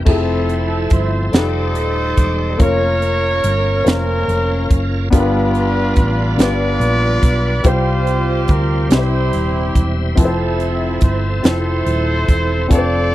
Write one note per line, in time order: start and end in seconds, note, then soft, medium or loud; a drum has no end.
0.05 0.87 F1 loud
0.05 1.33 F3 medium
0.05 1.19 F3 medium
0.05 1.18 A3 medium
0.05 1.33 C4 medium
0.05 1.18 C4 medium
0.05 1.30 C4 medium
0.05 1.33 E4 medium
0.05 1.19 E4 medium
0.05 1.30 E4 medium
0.05 0.13 G4 medium
0.05 0.14 G#4 medium
0.05 0.88 A4 medium
0.05 kick loud
0.05 crash medium
0.13 1.36 A4 medium
0.13 1.23 A4 medium
0.49 closed hi-hat soft
0.90 1.30 G1 medium
0.90 1.34 C5 medium
0.90 kick medium
0.90 closed hi-hat soft
1.32 1.76 F1 medium
1.32 2.60 G3 medium
1.32 2.44 A3 medium
1.32 2.45 D#4 medium
1.32 2.60 D#4 medium
1.32 2.46 F4 medium
1.32 2.46 G4 medium
1.32 1.40 G#4 medium
1.32 2.45 D5 medium
1.32 2.59 D5 medium
1.32 snare loud
1.32 closed hi-hat medium
1.36 2.57 D#4 medium
1.36 2.57 A4 medium
1.36 2.63 A4 medium
1.36 2.57 C5 medium
1.75 2.14 D#1 medium
1.75 closed hi-hat soft
2.17 2.56 E1 medium
2.17 kick medium
2.17 closed hi-hat medium
2.57 3.40 F1 medium
2.57 3.71 A#3 medium
2.57 5.08 A#3 medium
2.57 3.71 C#4 medium
2.57 5.08 C#4 medium
2.57 3.72 F4 medium
2.57 5.09 F4 medium
2.57 5.09 A#4 medium
2.57 3.72 A#4 medium
2.57 3.87 C#5 medium
2.57 kick loud
2.57 closed hi-hat medium
2.62 3.83 A#4 medium
3.02 closed hi-hat soft
3.44 3.83 G1 medium
3.44 closed hi-hat soft
3.84 4.25 F1 medium
3.84 4.97 A#3 medium
3.84 4.98 C#4 medium
3.84 4.98 F4 medium
3.84 3.86 C5 medium
3.84 3.93 C5 medium
3.84 snare loud
3.84 closed hi-hat medium
3.88 5.10 C#4 medium
3.88 4.82 A#4 medium
3.94 5.02 C#5 medium
4.28 4.67 F1 medium
4.28 closed hi-hat soft
4.70 5.09 F#1 medium
4.70 kick medium
4.70 closed hi-hat soft
5.10 5.93 G1 loud
5.10 6.35 G2 medium
5.10 7.61 G3 medium
5.10 6.23 B3 medium
5.10 6.24 D4 medium
5.10 7.61 D4 medium
5.10 6.24 F4 medium
5.10 7.61 F4 medium
5.10 6.25 G4 medium
5.10 5.19 A#4 medium
5.10 7.61 B4 medium
5.10 kick loud
5.10 closed hi-hat medium
5.14 6.37 D4 medium
5.14 6.36 F4 medium
5.14 6.36 B4 loud
5.20 6.28 B4 medium
5.55 closed hi-hat soft
5.96 6.35 A1 loud
5.96 kick medium
5.96 closed hi-hat soft
6.37 6.77 G1 loud
6.37 7.50 B3 medium
6.37 7.50 D4 medium
6.37 7.51 F4 medium
6.37 7.51 G4 medium
6.37 7.51 B4 medium
6.37 7.66 D5 loud
6.37 snare loud
6.37 closed hi-hat medium
6.41 7.62 F4 medium
6.41 7.62 B4 medium
6.80 7.19 A#1 medium
6.80 closed hi-hat soft
7.23 7.62 B1 medium
7.23 kick medium
7.23 closed hi-hat medium
7.63 8.45 C2 loud
7.63 8.87 C3 medium
7.63 8.76 G3 medium
7.63 8.90 G3 medium
7.63 8.76 C4 medium
7.63 8.91 C4 medium
7.63 7.72 E4 soft
7.63 8.77 F4 medium
7.63 8.77 G4 medium
7.63 8.91 C5 medium
7.63 8.50 C5 loud
7.63 8.78 C5 medium
7.63 kick loud
7.63 closed hi-hat medium
7.67 8.89 F4 medium
7.67 8.89 G4 medium
7.71 8.95 F4 medium
8.07 closed hi-hat soft
8.48 8.88 D2 medium
8.48 8.92 A#4 medium
8.48 kick medium
8.48 closed hi-hat soft
8.89 9.30 C2 medium
8.89 10.14 C3 medium
8.89 10.02 G3 medium
8.89 10.18 G3 medium
8.89 10.03 C4 medium
8.89 10.16 C4 medium
8.89 10.03 E4 medium
8.89 10.16 E4 medium
8.89 10.04 G4 medium
8.89 8.98 B4 medium
8.89 9.87 C5 medium
8.89 10.19 C5 medium
8.89 snare loud
8.89 closed hi-hat medium
8.94 10.01 E4 medium
8.94 10.01 G4 medium
8.99 10.07 C5 medium
9.33 9.72 D#1 medium
9.33 closed hi-hat soft
9.75 10.14 E1 medium
9.75 kick medium
9.75 closed hi-hat soft
10.15 10.98 F1 loud
10.15 11.30 F3 medium
10.15 12.67 F3 medium
10.15 11.29 C4 medium
10.15 12.67 C4 medium
10.15 11.29 E4 medium
10.15 12.67 E4 medium
10.15 12.67 A4 medium
10.15 10.98 A4 medium
10.15 11.30 A4 medium
10.15 10.25 B4 medium
10.15 kick loud
10.15 closed hi-hat medium
10.20 11.41 C4 medium
10.20 11.41 E4 medium
10.25 11.34 C5 medium
10.60 closed hi-hat soft
11.01 11.41 G1 medium
11.01 11.44 C5 medium
11.01 kick medium
11.01 closed hi-hat soft
11.42 11.83 F1 medium
11.42 12.56 F3 medium
11.42 12.56 C4 medium
11.42 12.56 E4 medium
11.42 12.57 A4 medium
11.42 12.57 C5 medium
11.42 12.67 C5 loud
11.42 snare loud
11.42 closed hi-hat medium
11.47 12.68 E4 medium
11.47 12.69 A4 medium
11.86 12.25 D#1 medium
11.86 closed hi-hat soft
12.28 12.67 E1 medium
12.28 kick medium
12.28 closed hi-hat medium
12.68 13.15 F1 loud
12.68 13.15 C4 medium
12.68 13.15 D4 medium
12.68 13.15 F4 medium
12.68 13.15 A4 medium
12.68 12.78 B4 medium
12.68 13.15 D5 loud
12.68 kick loud
12.68 closed hi-hat medium
12.72 13.15 F3 medium
12.72 13.15 C4 medium
12.72 13.15 A4 medium
12.78 13.15 C5 medium